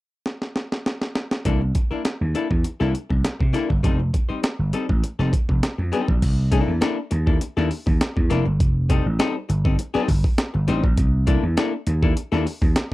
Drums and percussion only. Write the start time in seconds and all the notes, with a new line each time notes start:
0.26 snare
0.42 snare
0.56 snare
0.72 snare
0.86 snare
1.01 snare
1.15 snare
1.31 snare
1.45 kick, closed hi-hat
1.75 kick, closed hi-hat
2.05 snare, closed hi-hat
2.35 closed hi-hat
2.51 kick
2.64 closed hi-hat
2.81 snare
2.95 closed hi-hat
3.10 kick
3.25 snare, closed hi-hat
3.41 kick
3.54 snare, closed hi-hat
3.70 kick
3.84 kick, closed hi-hat
4.14 kick, closed hi-hat
4.44 snare, closed hi-hat
4.73 closed hi-hat
4.89 kick
5.04 closed hi-hat
5.19 snare
5.33 kick, closed hi-hat
5.49 kick
5.63 snare, closed hi-hat
5.93 snare, closed hi-hat
6.08 kick
6.22 kick, closed hi-hat, crash
6.52 kick, closed hi-hat
6.82 snare, closed hi-hat
7.11 closed hi-hat
7.27 kick
7.41 closed hi-hat
7.57 snare
7.71 open hi-hat
7.87 kick
8.01 snare, closed hi-hat
8.17 kick
8.31 snare, closed hi-hat
8.60 kick, closed hi-hat
8.90 kick, closed hi-hat
9.19 snare, closed hi-hat
9.50 closed hi-hat
9.65 kick
9.79 closed hi-hat
9.95 snare
10.08 kick, open hi-hat
10.24 kick
10.38 snare, closed hi-hat
10.68 snare, closed hi-hat
10.84 kick
10.97 kick, closed hi-hat
11.27 kick, closed hi-hat
11.57 snare, closed hi-hat
11.87 closed hi-hat
12.03 kick
12.17 closed hi-hat
12.33 snare
12.47 open hi-hat
12.62 kick
12.76 snare, closed hi-hat